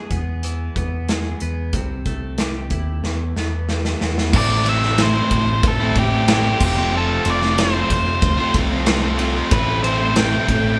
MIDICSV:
0, 0, Header, 1, 8, 480
1, 0, Start_track
1, 0, Key_signature, 0, "minor"
1, 0, Tempo, 649351
1, 1285, Time_signature, 4, 2, 24, 8
1, 7980, End_track
2, 0, Start_track
2, 0, Title_t, "Lead electric guitar"
2, 0, Program_c, 0, 29
2, 3231, Note_on_c, 0, 74, 101
2, 3444, Note_off_c, 0, 74, 0
2, 3468, Note_on_c, 0, 76, 102
2, 3706, Note_off_c, 0, 76, 0
2, 3712, Note_on_c, 0, 72, 99
2, 4193, Note_on_c, 0, 69, 88
2, 4194, Note_off_c, 0, 72, 0
2, 4405, Note_off_c, 0, 69, 0
2, 4425, Note_on_c, 0, 67, 92
2, 4905, Note_off_c, 0, 67, 0
2, 4914, Note_on_c, 0, 67, 85
2, 5147, Note_off_c, 0, 67, 0
2, 5154, Note_on_c, 0, 69, 87
2, 5387, Note_off_c, 0, 69, 0
2, 5396, Note_on_c, 0, 74, 97
2, 5625, Note_off_c, 0, 74, 0
2, 5628, Note_on_c, 0, 72, 87
2, 5852, Note_off_c, 0, 72, 0
2, 5861, Note_on_c, 0, 72, 91
2, 6302, Note_off_c, 0, 72, 0
2, 7042, Note_on_c, 0, 71, 91
2, 7264, Note_off_c, 0, 71, 0
2, 7272, Note_on_c, 0, 72, 88
2, 7515, Note_on_c, 0, 79, 112
2, 7522, Note_off_c, 0, 72, 0
2, 7980, Note_off_c, 0, 79, 0
2, 7980, End_track
3, 0, Start_track
3, 0, Title_t, "Distorted electric guitar"
3, 0, Program_c, 1, 30
3, 3199, Note_on_c, 1, 45, 91
3, 3204, Note_on_c, 1, 52, 92
3, 3210, Note_on_c, 1, 57, 87
3, 3216, Note_on_c, 1, 60, 95
3, 3220, Note_on_c, 1, 64, 100
3, 3435, Note_off_c, 1, 52, 0
3, 3444, Note_on_c, 1, 52, 77
3, 3446, Note_off_c, 1, 57, 0
3, 3449, Note_on_c, 1, 57, 78
3, 3451, Note_off_c, 1, 60, 0
3, 3452, Note_off_c, 1, 64, 0
3, 3454, Note_on_c, 1, 60, 92
3, 3461, Note_on_c, 1, 64, 89
3, 3553, Note_off_c, 1, 64, 0
3, 3562, Note_on_c, 1, 64, 84
3, 3570, Note_off_c, 1, 60, 0
3, 3573, Note_on_c, 1, 60, 60
3, 3576, Note_off_c, 1, 57, 0
3, 3579, Note_on_c, 1, 57, 59
3, 3667, Note_off_c, 1, 45, 0
3, 3673, Note_off_c, 1, 52, 0
3, 3676, Note_on_c, 1, 45, 91
3, 3682, Note_on_c, 1, 52, 100
3, 3683, Note_off_c, 1, 57, 0
3, 3686, Note_off_c, 1, 64, 0
3, 3686, Note_on_c, 1, 57, 93
3, 3687, Note_off_c, 1, 60, 0
3, 3690, Note_on_c, 1, 60, 89
3, 3695, Note_on_c, 1, 64, 94
3, 3911, Note_off_c, 1, 52, 0
3, 3920, Note_on_c, 1, 52, 79
3, 3923, Note_off_c, 1, 57, 0
3, 3926, Note_on_c, 1, 57, 87
3, 3929, Note_off_c, 1, 60, 0
3, 3931, Note_off_c, 1, 64, 0
3, 3932, Note_on_c, 1, 60, 85
3, 3940, Note_on_c, 1, 64, 88
3, 4028, Note_off_c, 1, 64, 0
3, 4037, Note_on_c, 1, 64, 83
3, 4048, Note_off_c, 1, 60, 0
3, 4051, Note_on_c, 1, 60, 74
3, 4056, Note_off_c, 1, 57, 0
3, 4059, Note_on_c, 1, 57, 64
3, 4162, Note_off_c, 1, 45, 0
3, 4276, Note_off_c, 1, 64, 0
3, 4284, Note_off_c, 1, 52, 0
3, 4284, Note_on_c, 1, 64, 75
3, 4294, Note_off_c, 1, 60, 0
3, 4297, Note_on_c, 1, 60, 73
3, 4301, Note_off_c, 1, 57, 0
3, 4304, Note_on_c, 1, 57, 65
3, 4400, Note_on_c, 1, 52, 80
3, 4406, Note_off_c, 1, 57, 0
3, 4409, Note_on_c, 1, 57, 78
3, 4412, Note_off_c, 1, 64, 0
3, 4414, Note_off_c, 1, 60, 0
3, 4417, Note_on_c, 1, 60, 85
3, 4421, Note_on_c, 1, 64, 85
3, 4514, Note_off_c, 1, 64, 0
3, 4523, Note_on_c, 1, 64, 73
3, 4532, Note_off_c, 1, 60, 0
3, 4535, Note_on_c, 1, 60, 62
3, 4540, Note_off_c, 1, 57, 0
3, 4543, Note_on_c, 1, 57, 60
3, 4751, Note_off_c, 1, 64, 0
3, 4760, Note_on_c, 1, 64, 102
3, 4762, Note_off_c, 1, 60, 0
3, 4763, Note_off_c, 1, 52, 0
3, 4765, Note_on_c, 1, 60, 89
3, 4770, Note_off_c, 1, 57, 0
3, 4773, Note_on_c, 1, 57, 81
3, 4777, Note_on_c, 1, 52, 76
3, 4780, Note_on_c, 1, 45, 75
3, 4869, Note_off_c, 1, 64, 0
3, 4878, Note_off_c, 1, 52, 0
3, 4879, Note_off_c, 1, 45, 0
3, 4881, Note_on_c, 1, 53, 85
3, 4888, Note_off_c, 1, 57, 0
3, 4891, Note_on_c, 1, 57, 95
3, 4894, Note_off_c, 1, 60, 0
3, 4897, Note_on_c, 1, 60, 107
3, 4904, Note_on_c, 1, 65, 96
3, 4992, Note_off_c, 1, 65, 0
3, 5001, Note_on_c, 1, 65, 75
3, 5007, Note_off_c, 1, 60, 0
3, 5010, Note_on_c, 1, 60, 68
3, 5018, Note_off_c, 1, 57, 0
3, 5020, Note_on_c, 1, 57, 69
3, 5112, Note_off_c, 1, 53, 0
3, 5121, Note_on_c, 1, 53, 94
3, 5126, Note_off_c, 1, 57, 0
3, 5129, Note_on_c, 1, 57, 81
3, 5133, Note_off_c, 1, 65, 0
3, 5135, Note_off_c, 1, 60, 0
3, 5138, Note_on_c, 1, 60, 102
3, 5141, Note_on_c, 1, 65, 99
3, 5349, Note_off_c, 1, 53, 0
3, 5358, Note_on_c, 1, 53, 77
3, 5361, Note_off_c, 1, 57, 0
3, 5364, Note_on_c, 1, 57, 78
3, 5368, Note_off_c, 1, 65, 0
3, 5369, Note_off_c, 1, 60, 0
3, 5372, Note_on_c, 1, 60, 81
3, 5377, Note_on_c, 1, 65, 90
3, 5469, Note_off_c, 1, 65, 0
3, 5478, Note_on_c, 1, 65, 78
3, 5485, Note_off_c, 1, 60, 0
3, 5488, Note_on_c, 1, 60, 75
3, 5496, Note_off_c, 1, 57, 0
3, 5499, Note_on_c, 1, 57, 72
3, 5590, Note_off_c, 1, 53, 0
3, 5599, Note_on_c, 1, 53, 93
3, 5601, Note_off_c, 1, 57, 0
3, 5604, Note_on_c, 1, 57, 94
3, 5609, Note_off_c, 1, 60, 0
3, 5609, Note_off_c, 1, 65, 0
3, 5612, Note_on_c, 1, 60, 93
3, 5618, Note_on_c, 1, 65, 114
3, 5823, Note_off_c, 1, 53, 0
3, 5832, Note_on_c, 1, 53, 86
3, 5835, Note_off_c, 1, 57, 0
3, 5838, Note_on_c, 1, 57, 87
3, 5844, Note_off_c, 1, 60, 0
3, 5845, Note_off_c, 1, 65, 0
3, 5847, Note_on_c, 1, 60, 82
3, 5854, Note_on_c, 1, 65, 96
3, 5939, Note_off_c, 1, 65, 0
3, 5948, Note_on_c, 1, 65, 79
3, 5956, Note_off_c, 1, 60, 0
3, 5959, Note_on_c, 1, 60, 77
3, 5966, Note_off_c, 1, 57, 0
3, 5969, Note_on_c, 1, 57, 59
3, 6183, Note_off_c, 1, 65, 0
3, 6191, Note_on_c, 1, 65, 77
3, 6197, Note_off_c, 1, 53, 0
3, 6200, Note_off_c, 1, 60, 0
3, 6202, Note_on_c, 1, 60, 69
3, 6207, Note_off_c, 1, 57, 0
3, 6210, Note_on_c, 1, 57, 64
3, 6307, Note_on_c, 1, 53, 67
3, 6314, Note_off_c, 1, 57, 0
3, 6316, Note_on_c, 1, 57, 85
3, 6320, Note_off_c, 1, 60, 0
3, 6322, Note_off_c, 1, 65, 0
3, 6323, Note_on_c, 1, 60, 77
3, 6331, Note_on_c, 1, 65, 84
3, 6421, Note_off_c, 1, 65, 0
3, 6430, Note_on_c, 1, 65, 65
3, 6440, Note_off_c, 1, 60, 0
3, 6443, Note_on_c, 1, 60, 71
3, 6448, Note_off_c, 1, 57, 0
3, 6451, Note_on_c, 1, 57, 53
3, 6654, Note_off_c, 1, 65, 0
3, 6663, Note_on_c, 1, 65, 85
3, 6670, Note_off_c, 1, 60, 0
3, 6673, Note_off_c, 1, 57, 0
3, 6673, Note_on_c, 1, 60, 87
3, 6674, Note_off_c, 1, 53, 0
3, 6676, Note_on_c, 1, 57, 81
3, 6684, Note_on_c, 1, 53, 75
3, 6783, Note_off_c, 1, 53, 0
3, 6792, Note_on_c, 1, 53, 75
3, 6794, Note_off_c, 1, 57, 0
3, 6797, Note_on_c, 1, 57, 84
3, 6801, Note_off_c, 1, 60, 0
3, 6801, Note_off_c, 1, 65, 0
3, 6804, Note_on_c, 1, 60, 79
3, 6810, Note_on_c, 1, 65, 81
3, 6894, Note_off_c, 1, 65, 0
3, 6903, Note_on_c, 1, 65, 78
3, 6908, Note_off_c, 1, 60, 0
3, 6911, Note_on_c, 1, 60, 72
3, 6917, Note_off_c, 1, 57, 0
3, 6920, Note_on_c, 1, 57, 62
3, 7017, Note_off_c, 1, 65, 0
3, 7022, Note_off_c, 1, 53, 0
3, 7031, Note_on_c, 1, 45, 94
3, 7036, Note_on_c, 1, 52, 87
3, 7039, Note_off_c, 1, 57, 0
3, 7042, Note_on_c, 1, 57, 100
3, 7045, Note_off_c, 1, 60, 0
3, 7048, Note_on_c, 1, 60, 102
3, 7051, Note_on_c, 1, 64, 98
3, 7263, Note_off_c, 1, 52, 0
3, 7266, Note_on_c, 1, 52, 81
3, 7272, Note_off_c, 1, 57, 0
3, 7275, Note_on_c, 1, 57, 87
3, 7278, Note_off_c, 1, 60, 0
3, 7281, Note_on_c, 1, 60, 84
3, 7284, Note_off_c, 1, 64, 0
3, 7287, Note_on_c, 1, 64, 86
3, 7384, Note_off_c, 1, 64, 0
3, 7387, Note_on_c, 1, 64, 83
3, 7396, Note_off_c, 1, 60, 0
3, 7399, Note_on_c, 1, 60, 74
3, 7405, Note_off_c, 1, 57, 0
3, 7408, Note_on_c, 1, 57, 69
3, 7502, Note_off_c, 1, 45, 0
3, 7505, Note_on_c, 1, 45, 93
3, 7508, Note_off_c, 1, 52, 0
3, 7511, Note_off_c, 1, 57, 0
3, 7511, Note_on_c, 1, 52, 92
3, 7514, Note_on_c, 1, 57, 100
3, 7516, Note_off_c, 1, 60, 0
3, 7519, Note_on_c, 1, 60, 111
3, 7523, Note_off_c, 1, 64, 0
3, 7526, Note_on_c, 1, 64, 103
3, 7740, Note_off_c, 1, 52, 0
3, 7743, Note_on_c, 1, 52, 97
3, 7747, Note_off_c, 1, 57, 0
3, 7750, Note_on_c, 1, 57, 78
3, 7755, Note_off_c, 1, 60, 0
3, 7758, Note_on_c, 1, 60, 91
3, 7759, Note_off_c, 1, 64, 0
3, 7762, Note_on_c, 1, 64, 95
3, 7857, Note_off_c, 1, 64, 0
3, 7866, Note_on_c, 1, 64, 80
3, 7876, Note_off_c, 1, 60, 0
3, 7879, Note_off_c, 1, 57, 0
3, 7879, Note_on_c, 1, 60, 70
3, 7888, Note_on_c, 1, 57, 60
3, 7980, Note_off_c, 1, 45, 0
3, 7980, Note_off_c, 1, 52, 0
3, 7980, Note_off_c, 1, 57, 0
3, 7980, Note_off_c, 1, 60, 0
3, 7980, Note_off_c, 1, 64, 0
3, 7980, End_track
4, 0, Start_track
4, 0, Title_t, "Distorted electric guitar"
4, 0, Program_c, 2, 30
4, 3806, Note_on_c, 2, 64, 78
4, 3817, Note_on_c, 2, 60, 70
4, 3829, Note_on_c, 2, 57, 68
4, 3937, Note_off_c, 2, 64, 0
4, 3938, Note_off_c, 2, 57, 0
4, 3942, Note_off_c, 2, 60, 0
4, 4639, Note_on_c, 2, 45, 87
4, 4646, Note_on_c, 2, 52, 111
4, 4653, Note_on_c, 2, 57, 94
4, 4658, Note_on_c, 2, 60, 92
4, 4661, Note_on_c, 2, 64, 104
4, 4746, Note_off_c, 2, 64, 0
4, 4765, Note_off_c, 2, 60, 0
4, 4778, Note_off_c, 2, 57, 0
4, 4868, Note_off_c, 2, 45, 0
4, 4870, Note_off_c, 2, 52, 0
4, 5709, Note_on_c, 2, 65, 78
4, 5725, Note_on_c, 2, 60, 74
4, 5736, Note_on_c, 2, 57, 62
4, 5833, Note_off_c, 2, 65, 0
4, 5838, Note_off_c, 2, 60, 0
4, 5839, Note_off_c, 2, 57, 0
4, 6553, Note_on_c, 2, 53, 93
4, 6556, Note_on_c, 2, 57, 97
4, 6566, Note_on_c, 2, 60, 104
4, 6570, Note_on_c, 2, 65, 106
4, 6656, Note_off_c, 2, 65, 0
4, 6673, Note_off_c, 2, 60, 0
4, 6679, Note_off_c, 2, 57, 0
4, 6772, Note_off_c, 2, 53, 0
4, 7625, Note_on_c, 2, 64, 75
4, 7636, Note_on_c, 2, 60, 76
4, 7649, Note_on_c, 2, 57, 68
4, 7743, Note_off_c, 2, 57, 0
4, 7747, Note_off_c, 2, 60, 0
4, 7748, Note_off_c, 2, 64, 0
4, 7980, End_track
5, 0, Start_track
5, 0, Title_t, "Clean electric guitar"
5, 0, Program_c, 3, 27
5, 0, Note_on_c, 3, 40, 69
5, 0, Note_on_c, 3, 56, 53
5, 0, Note_on_c, 3, 68, 68
5, 83, Note_on_c, 3, 59, 57
5, 326, Note_on_c, 3, 52, 58
5, 561, Note_off_c, 3, 59, 0
5, 566, Note_off_c, 3, 40, 0
5, 570, Note_on_c, 3, 59, 56
5, 796, Note_off_c, 3, 56, 0
5, 805, Note_on_c, 3, 56, 59
5, 1040, Note_off_c, 3, 59, 0
5, 1048, Note_off_c, 3, 68, 0
5, 1049, Note_on_c, 3, 59, 60
5, 1286, Note_off_c, 3, 56, 0
5, 1288, Note_off_c, 3, 59, 0
5, 1292, Note_on_c, 3, 48, 67
5, 1525, Note_on_c, 3, 57, 59
5, 1774, Note_on_c, 3, 67, 69
5, 2009, Note_on_c, 3, 64, 54
5, 2247, Note_off_c, 3, 57, 0
5, 2249, Note_off_c, 3, 64, 0
5, 2251, Note_on_c, 3, 40, 62
5, 2252, Note_off_c, 3, 48, 0
5, 2252, Note_off_c, 3, 67, 0
5, 2495, Note_on_c, 3, 59, 58
5, 2734, Note_on_c, 3, 55, 56
5, 2913, Note_off_c, 3, 52, 0
5, 2961, Note_off_c, 3, 59, 0
5, 2969, Note_on_c, 3, 59, 57
5, 3210, Note_off_c, 3, 59, 0
5, 3211, Note_off_c, 3, 40, 0
5, 3212, Note_off_c, 3, 55, 0
5, 7980, End_track
6, 0, Start_track
6, 0, Title_t, "Picked electric bass"
6, 0, Program_c, 4, 34
6, 79, Note_on_c, 4, 40, 74
6, 502, Note_off_c, 4, 40, 0
6, 561, Note_on_c, 4, 40, 76
6, 984, Note_off_c, 4, 40, 0
6, 1048, Note_on_c, 4, 40, 72
6, 1257, Note_off_c, 4, 40, 0
6, 1279, Note_on_c, 4, 36, 81
6, 1493, Note_off_c, 4, 36, 0
6, 1522, Note_on_c, 4, 36, 76
6, 2001, Note_off_c, 4, 36, 0
6, 2001, Note_on_c, 4, 39, 77
6, 2215, Note_off_c, 4, 39, 0
6, 2243, Note_on_c, 4, 40, 80
6, 2456, Note_off_c, 4, 40, 0
6, 2485, Note_on_c, 4, 40, 84
6, 2908, Note_off_c, 4, 40, 0
6, 2970, Note_on_c, 4, 40, 72
6, 3180, Note_off_c, 4, 40, 0
6, 3201, Note_on_c, 4, 33, 98
6, 3835, Note_off_c, 4, 33, 0
6, 3926, Note_on_c, 4, 33, 98
6, 4137, Note_off_c, 4, 33, 0
6, 4165, Note_on_c, 4, 33, 91
6, 4377, Note_off_c, 4, 33, 0
6, 4401, Note_on_c, 4, 33, 108
6, 4824, Note_off_c, 4, 33, 0
6, 4884, Note_on_c, 4, 29, 94
6, 5305, Note_off_c, 4, 29, 0
6, 5365, Note_on_c, 4, 29, 102
6, 5785, Note_off_c, 4, 29, 0
6, 5839, Note_on_c, 4, 41, 91
6, 6051, Note_off_c, 4, 41, 0
6, 6077, Note_on_c, 4, 38, 96
6, 6185, Note_off_c, 4, 38, 0
6, 6316, Note_on_c, 4, 36, 87
6, 6948, Note_off_c, 4, 36, 0
6, 7036, Note_on_c, 4, 33, 106
6, 7667, Note_off_c, 4, 33, 0
6, 7749, Note_on_c, 4, 33, 107
6, 7963, Note_off_c, 4, 33, 0
6, 7980, End_track
7, 0, Start_track
7, 0, Title_t, "Muted distorted electric guitar strokes"
7, 3934, Note_on_c, 9, 29, 50
7, 4008, Note_off_c, 9, 29, 0
7, 5835, Note_on_c, 9, 29, 44
7, 5909, Note_off_c, 9, 29, 0
7, 7745, Note_on_c, 9, 29, 46
7, 7819, Note_off_c, 9, 29, 0
7, 7980, End_track
8, 0, Start_track
8, 0, Title_t, "Drums"
8, 78, Note_on_c, 9, 42, 50
8, 79, Note_on_c, 9, 36, 74
8, 152, Note_off_c, 9, 42, 0
8, 153, Note_off_c, 9, 36, 0
8, 319, Note_on_c, 9, 42, 69
8, 393, Note_off_c, 9, 42, 0
8, 562, Note_on_c, 9, 36, 78
8, 564, Note_on_c, 9, 42, 55
8, 635, Note_off_c, 9, 36, 0
8, 638, Note_off_c, 9, 42, 0
8, 803, Note_on_c, 9, 42, 73
8, 807, Note_on_c, 9, 38, 91
8, 876, Note_off_c, 9, 42, 0
8, 881, Note_off_c, 9, 38, 0
8, 1037, Note_on_c, 9, 42, 48
8, 1111, Note_off_c, 9, 42, 0
8, 1278, Note_on_c, 9, 42, 74
8, 1280, Note_on_c, 9, 36, 96
8, 1352, Note_off_c, 9, 42, 0
8, 1354, Note_off_c, 9, 36, 0
8, 1520, Note_on_c, 9, 42, 51
8, 1521, Note_on_c, 9, 36, 70
8, 1594, Note_off_c, 9, 42, 0
8, 1595, Note_off_c, 9, 36, 0
8, 1758, Note_on_c, 9, 42, 68
8, 1762, Note_on_c, 9, 38, 90
8, 1832, Note_off_c, 9, 42, 0
8, 1836, Note_off_c, 9, 38, 0
8, 1998, Note_on_c, 9, 42, 54
8, 2001, Note_on_c, 9, 36, 73
8, 2072, Note_off_c, 9, 42, 0
8, 2075, Note_off_c, 9, 36, 0
8, 2245, Note_on_c, 9, 38, 50
8, 2319, Note_off_c, 9, 38, 0
8, 2487, Note_on_c, 9, 38, 55
8, 2561, Note_off_c, 9, 38, 0
8, 2725, Note_on_c, 9, 38, 60
8, 2799, Note_off_c, 9, 38, 0
8, 2846, Note_on_c, 9, 38, 66
8, 2920, Note_off_c, 9, 38, 0
8, 2965, Note_on_c, 9, 38, 76
8, 3039, Note_off_c, 9, 38, 0
8, 3090, Note_on_c, 9, 38, 73
8, 3164, Note_off_c, 9, 38, 0
8, 3204, Note_on_c, 9, 36, 113
8, 3204, Note_on_c, 9, 49, 121
8, 3278, Note_off_c, 9, 36, 0
8, 3278, Note_off_c, 9, 49, 0
8, 3444, Note_on_c, 9, 51, 68
8, 3518, Note_off_c, 9, 51, 0
8, 3571, Note_on_c, 9, 38, 35
8, 3645, Note_off_c, 9, 38, 0
8, 3681, Note_on_c, 9, 51, 94
8, 3686, Note_on_c, 9, 38, 98
8, 3755, Note_off_c, 9, 51, 0
8, 3760, Note_off_c, 9, 38, 0
8, 3924, Note_on_c, 9, 51, 70
8, 3925, Note_on_c, 9, 36, 78
8, 3998, Note_off_c, 9, 51, 0
8, 3999, Note_off_c, 9, 36, 0
8, 4163, Note_on_c, 9, 51, 98
8, 4164, Note_on_c, 9, 36, 126
8, 4237, Note_off_c, 9, 51, 0
8, 4238, Note_off_c, 9, 36, 0
8, 4401, Note_on_c, 9, 51, 72
8, 4404, Note_on_c, 9, 36, 91
8, 4475, Note_off_c, 9, 51, 0
8, 4478, Note_off_c, 9, 36, 0
8, 4641, Note_on_c, 9, 51, 105
8, 4646, Note_on_c, 9, 38, 112
8, 4715, Note_off_c, 9, 51, 0
8, 4720, Note_off_c, 9, 38, 0
8, 4881, Note_on_c, 9, 57, 108
8, 4883, Note_on_c, 9, 36, 106
8, 4955, Note_off_c, 9, 57, 0
8, 4957, Note_off_c, 9, 36, 0
8, 5358, Note_on_c, 9, 51, 78
8, 5432, Note_off_c, 9, 51, 0
8, 5486, Note_on_c, 9, 38, 35
8, 5560, Note_off_c, 9, 38, 0
8, 5603, Note_on_c, 9, 51, 106
8, 5608, Note_on_c, 9, 38, 106
8, 5677, Note_off_c, 9, 51, 0
8, 5682, Note_off_c, 9, 38, 0
8, 5840, Note_on_c, 9, 36, 83
8, 5842, Note_on_c, 9, 51, 82
8, 5914, Note_off_c, 9, 36, 0
8, 5916, Note_off_c, 9, 51, 0
8, 6076, Note_on_c, 9, 51, 109
8, 6078, Note_on_c, 9, 36, 114
8, 6150, Note_off_c, 9, 51, 0
8, 6152, Note_off_c, 9, 36, 0
8, 6313, Note_on_c, 9, 51, 86
8, 6316, Note_on_c, 9, 36, 94
8, 6387, Note_off_c, 9, 51, 0
8, 6390, Note_off_c, 9, 36, 0
8, 6551, Note_on_c, 9, 51, 104
8, 6556, Note_on_c, 9, 38, 116
8, 6625, Note_off_c, 9, 51, 0
8, 6630, Note_off_c, 9, 38, 0
8, 6792, Note_on_c, 9, 51, 77
8, 6866, Note_off_c, 9, 51, 0
8, 7031, Note_on_c, 9, 51, 108
8, 7033, Note_on_c, 9, 36, 110
8, 7105, Note_off_c, 9, 51, 0
8, 7107, Note_off_c, 9, 36, 0
8, 7274, Note_on_c, 9, 51, 71
8, 7348, Note_off_c, 9, 51, 0
8, 7508, Note_on_c, 9, 51, 92
8, 7512, Note_on_c, 9, 38, 108
8, 7582, Note_off_c, 9, 51, 0
8, 7586, Note_off_c, 9, 38, 0
8, 7750, Note_on_c, 9, 36, 85
8, 7751, Note_on_c, 9, 51, 81
8, 7824, Note_off_c, 9, 36, 0
8, 7824, Note_off_c, 9, 51, 0
8, 7980, End_track
0, 0, End_of_file